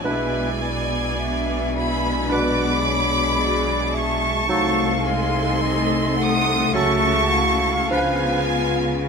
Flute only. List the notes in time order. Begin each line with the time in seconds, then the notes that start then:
0.04 E5
0.62 D5
1.20 E5
2.32 D5
2.86 C#5
3.40 D5
3.94 E5
4.49 F5
5.62 D#5
6.17 F#5
6.73 E5
7.31 F5